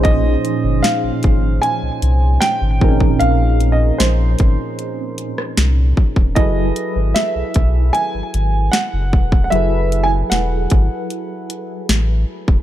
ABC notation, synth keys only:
X:1
M:4/4
L:1/8
Q:1/4=76
K:Bblyd
V:1 name="Synth keys"
[B,,F,_D_E_Ac]6- [B,,F,DEAc] [B,,F,CDEAB]- | [B,,F,C_D_E_AB]6- [B,,F,CDEAB] z | [^F,E^GA=B]8 | [^F,E^GA=B]8 |]